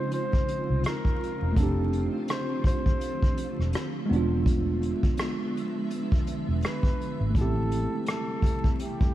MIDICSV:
0, 0, Header, 1, 6, 480
1, 0, Start_track
1, 0, Tempo, 722892
1, 1037, Time_signature, 4, 2, 24, 8
1, 6070, End_track
2, 0, Start_track
2, 0, Title_t, "Flugelhorn"
2, 0, Program_c, 0, 56
2, 0, Note_on_c, 0, 72, 115
2, 85, Note_off_c, 0, 72, 0
2, 92, Note_on_c, 0, 72, 116
2, 538, Note_off_c, 0, 72, 0
2, 568, Note_on_c, 0, 70, 103
2, 1047, Note_on_c, 0, 69, 92
2, 1057, Note_off_c, 0, 70, 0
2, 1352, Note_off_c, 0, 69, 0
2, 1528, Note_on_c, 0, 72, 98
2, 1746, Note_off_c, 0, 72, 0
2, 1768, Note_on_c, 0, 72, 109
2, 2696, Note_off_c, 0, 72, 0
2, 4420, Note_on_c, 0, 71, 92
2, 4862, Note_off_c, 0, 71, 0
2, 4900, Note_on_c, 0, 69, 95
2, 5342, Note_off_c, 0, 69, 0
2, 5378, Note_on_c, 0, 69, 102
2, 5821, Note_off_c, 0, 69, 0
2, 5856, Note_on_c, 0, 67, 94
2, 6070, Note_off_c, 0, 67, 0
2, 6070, End_track
3, 0, Start_track
3, 0, Title_t, "Tine electric piano"
3, 0, Program_c, 1, 4
3, 0, Control_c, 1, 64, 127
3, 0, Note_on_c, 1, 56, 65
3, 0, Note_on_c, 1, 60, 59
3, 0, Note_on_c, 1, 63, 59
3, 0, Note_on_c, 1, 65, 70
3, 998, Note_off_c, 1, 56, 0
3, 1011, Note_off_c, 1, 60, 0
3, 1012, Note_on_c, 1, 57, 65
3, 1022, Note_off_c, 1, 63, 0
3, 1034, Note_off_c, 1, 65, 0
3, 1036, Note_on_c, 1, 60, 57
3, 1045, Control_c, 1, 64, 0
3, 1059, Note_on_c, 1, 62, 62
3, 1083, Note_on_c, 1, 67, 70
3, 1144, Control_c, 1, 64, 127
3, 2678, Note_off_c, 1, 57, 0
3, 2690, Note_off_c, 1, 60, 0
3, 2694, Note_on_c, 1, 56, 82
3, 2702, Note_off_c, 1, 62, 0
3, 2714, Note_off_c, 1, 67, 0
3, 2718, Note_on_c, 1, 59, 71
3, 2728, Control_c, 1, 64, 0
3, 2741, Note_on_c, 1, 62, 72
3, 2765, Note_on_c, 1, 65, 84
3, 2847, Control_c, 1, 64, 127
3, 4599, Note_off_c, 1, 56, 0
3, 4611, Note_off_c, 1, 59, 0
3, 4623, Note_off_c, 1, 62, 0
3, 4635, Note_off_c, 1, 65, 0
3, 4851, Note_on_c, 1, 57, 63
3, 4876, Note_on_c, 1, 59, 45
3, 4888, Control_c, 1, 64, 0
3, 4899, Note_on_c, 1, 64, 60
3, 4918, Note_on_c, 1, 60, 61
3, 4922, Note_on_c, 1, 67, 75
3, 4926, Note_off_c, 1, 59, 0
3, 5021, Control_c, 1, 64, 127
3, 6070, Note_off_c, 1, 57, 0
3, 6070, Note_off_c, 1, 60, 0
3, 6070, Note_off_c, 1, 64, 0
3, 6070, Note_off_c, 1, 67, 0
3, 6070, End_track
4, 0, Start_track
4, 0, Title_t, "Ambient pad"
4, 0, Program_c, 2, 92
4, 0, Note_on_c, 2, 49, 74
4, 0, Note_on_c, 2, 53, 69
4, 0, Note_on_c, 2, 60, 70
4, 0, Note_on_c, 2, 63, 67
4, 0, Note_on_c, 2, 65, 80
4, 1019, Note_off_c, 2, 49, 0
4, 1019, Note_off_c, 2, 63, 0
4, 1038, Note_on_c, 2, 50, 78
4, 1038, Note_on_c, 2, 57, 67
4, 2691, Note_off_c, 2, 53, 0
4, 2691, Note_off_c, 2, 60, 0
4, 2692, Note_off_c, 2, 65, 0
4, 2701, Note_off_c, 2, 57, 0
4, 2717, Note_on_c, 2, 53, 72
4, 2718, Note_on_c, 2, 76, 87
4, 2720, Note_on_c, 2, 56, 71
4, 2721, Note_on_c, 2, 59, 70
4, 4851, Note_off_c, 2, 50, 0
4, 4855, Note_off_c, 2, 53, 0
4, 4857, Note_off_c, 2, 56, 0
4, 4857, Note_off_c, 2, 59, 0
4, 4878, Note_on_c, 2, 52, 69
4, 4878, Note_on_c, 2, 55, 69
4, 4879, Note_on_c, 2, 57, 69
4, 4881, Note_on_c, 2, 48, 76
4, 6070, Note_off_c, 2, 48, 0
4, 6070, Note_off_c, 2, 52, 0
4, 6070, Note_off_c, 2, 55, 0
4, 6070, Note_off_c, 2, 57, 0
4, 6070, Note_off_c, 2, 76, 0
4, 6070, End_track
5, 0, Start_track
5, 0, Title_t, "Fingered electric bass"
5, 0, Program_c, 3, 33
5, 464, Note_on_c, 3, 36, 83
5, 551, Note_off_c, 3, 36, 0
5, 944, Note_on_c, 3, 28, 86
5, 1030, Note_off_c, 3, 28, 0
5, 1044, Note_on_c, 3, 29, 97
5, 1374, Note_off_c, 3, 29, 0
5, 2385, Note_on_c, 3, 28, 92
5, 2471, Note_off_c, 3, 28, 0
5, 2727, Note_on_c, 3, 28, 97
5, 3267, Note_off_c, 3, 28, 0
5, 4305, Note_on_c, 3, 28, 91
5, 4391, Note_off_c, 3, 28, 0
5, 4785, Note_on_c, 3, 32, 81
5, 4871, Note_off_c, 3, 32, 0
5, 4885, Note_on_c, 3, 33, 109
5, 5214, Note_off_c, 3, 33, 0
5, 6070, End_track
6, 0, Start_track
6, 0, Title_t, "Drums"
6, 77, Note_on_c, 9, 42, 95
6, 143, Note_off_c, 9, 42, 0
6, 221, Note_on_c, 9, 36, 90
6, 287, Note_off_c, 9, 36, 0
6, 321, Note_on_c, 9, 42, 75
6, 388, Note_off_c, 9, 42, 0
6, 555, Note_on_c, 9, 42, 91
6, 572, Note_on_c, 9, 37, 125
6, 621, Note_off_c, 9, 42, 0
6, 639, Note_off_c, 9, 37, 0
6, 696, Note_on_c, 9, 36, 88
6, 762, Note_off_c, 9, 36, 0
6, 818, Note_on_c, 9, 42, 55
6, 885, Note_off_c, 9, 42, 0
6, 1039, Note_on_c, 9, 36, 108
6, 1042, Note_on_c, 9, 42, 87
6, 1105, Note_off_c, 9, 36, 0
6, 1108, Note_off_c, 9, 42, 0
6, 1281, Note_on_c, 9, 42, 67
6, 1348, Note_off_c, 9, 42, 0
6, 1513, Note_on_c, 9, 42, 92
6, 1528, Note_on_c, 9, 37, 121
6, 1580, Note_off_c, 9, 42, 0
6, 1594, Note_off_c, 9, 37, 0
6, 1753, Note_on_c, 9, 36, 93
6, 1775, Note_on_c, 9, 42, 73
6, 1820, Note_off_c, 9, 36, 0
6, 1842, Note_off_c, 9, 42, 0
6, 1898, Note_on_c, 9, 36, 85
6, 1965, Note_off_c, 9, 36, 0
6, 1998, Note_on_c, 9, 42, 94
6, 2064, Note_off_c, 9, 42, 0
6, 2141, Note_on_c, 9, 36, 91
6, 2208, Note_off_c, 9, 36, 0
6, 2240, Note_on_c, 9, 42, 77
6, 2307, Note_off_c, 9, 42, 0
6, 2395, Note_on_c, 9, 37, 36
6, 2461, Note_off_c, 9, 37, 0
6, 2476, Note_on_c, 9, 42, 92
6, 2493, Note_on_c, 9, 37, 118
6, 2542, Note_off_c, 9, 42, 0
6, 2559, Note_off_c, 9, 37, 0
6, 2740, Note_on_c, 9, 42, 58
6, 2806, Note_off_c, 9, 42, 0
6, 2961, Note_on_c, 9, 36, 106
6, 2968, Note_on_c, 9, 42, 85
6, 3027, Note_off_c, 9, 36, 0
6, 3034, Note_off_c, 9, 42, 0
6, 3205, Note_on_c, 9, 42, 69
6, 3271, Note_off_c, 9, 42, 0
6, 3341, Note_on_c, 9, 36, 92
6, 3408, Note_off_c, 9, 36, 0
6, 3435, Note_on_c, 9, 42, 95
6, 3450, Note_on_c, 9, 37, 111
6, 3501, Note_off_c, 9, 42, 0
6, 3516, Note_off_c, 9, 37, 0
6, 3699, Note_on_c, 9, 42, 73
6, 3765, Note_off_c, 9, 42, 0
6, 3920, Note_on_c, 9, 42, 91
6, 3987, Note_off_c, 9, 42, 0
6, 4063, Note_on_c, 9, 36, 102
6, 4129, Note_off_c, 9, 36, 0
6, 4162, Note_on_c, 9, 42, 76
6, 4228, Note_off_c, 9, 42, 0
6, 4397, Note_on_c, 9, 42, 89
6, 4414, Note_on_c, 9, 37, 120
6, 4463, Note_off_c, 9, 42, 0
6, 4481, Note_off_c, 9, 37, 0
6, 4536, Note_on_c, 9, 36, 88
6, 4603, Note_off_c, 9, 36, 0
6, 4657, Note_on_c, 9, 42, 54
6, 4724, Note_off_c, 9, 42, 0
6, 4880, Note_on_c, 9, 36, 107
6, 4885, Note_on_c, 9, 42, 84
6, 4946, Note_off_c, 9, 36, 0
6, 4951, Note_off_c, 9, 42, 0
6, 5122, Note_on_c, 9, 42, 69
6, 5189, Note_off_c, 9, 42, 0
6, 5353, Note_on_c, 9, 42, 101
6, 5368, Note_on_c, 9, 37, 114
6, 5420, Note_off_c, 9, 42, 0
6, 5434, Note_off_c, 9, 37, 0
6, 5593, Note_on_c, 9, 36, 93
6, 5615, Note_on_c, 9, 42, 71
6, 5660, Note_off_c, 9, 36, 0
6, 5682, Note_off_c, 9, 42, 0
6, 5738, Note_on_c, 9, 36, 90
6, 5805, Note_off_c, 9, 36, 0
6, 5839, Note_on_c, 9, 42, 93
6, 5906, Note_off_c, 9, 42, 0
6, 5981, Note_on_c, 9, 36, 97
6, 6048, Note_off_c, 9, 36, 0
6, 6070, End_track
0, 0, End_of_file